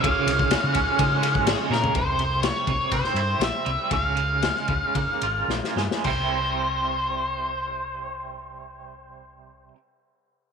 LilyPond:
<<
  \new Staff \with { instrumentName = "Lead electric guitar" } { \time 4/4 \tempo 4 = 113 f''2. aes'8 bes'8 | c''4 des''4 c''4 e''4 | f''2. r4 | c''1~ |
c''1 | }
  \new Staff \with { instrumentName = "Transistor combo organ" } { \time 4/4 <f aes des' aes' des''>1 | r1 | r1 | r1 |
r1 | }
  \new Staff \with { instrumentName = "Clean electric guitar" } { \clef bass \time 4/4 des4 des8 des'8 aes8 des8 aes8 des8 | c8 c8 g8 c8 c'8 e'8 c'8 g8 | des8 des8 aes8 des8 bes8 f'8 bes8 aes8 | <c g c' e'>1~ |
<c g c' e'>1 | }
  \new Staff \with { instrumentName = "Fingered electric bass" } { \clef bass \time 4/4 des,16 r16 c,8. des16 des,16 r16 des8. aes,,8 r16 bes,8 | c,4. c,16 r16 c16 r16 g,8 bes,,16 r16 c,16 r16 | des,4. des,16 r16 des16 r16 aes,,8 bes,,16 r16 g,16 r16 | c,1~ |
c,1 | }
  \new DrumStaff \with { instrumentName = "Drums" } \drummode { \time 4/4 <bd cymr>8 cymr16 bd16 <cymr sn>8 <bd cymr>8 <bd cymr>8 cymr16 bd16 <cymr sn>8 sn16 tomfh16 | <bd cymr>8 cymr8 <cymr sn>8 <bd cymr>8 <bd cymr>16 sn16 cymr8 <cymr sn>8 cymr8 | <bd cymr>8 cymr8 <cymr sn>16 sn16 <bd cymr>8 <bd cymr>8 cymr8 sn16 sn16 sn16 sn16 | <cymc bd>4 r4 r4 r4 |
r4 r4 r4 r4 | }
>>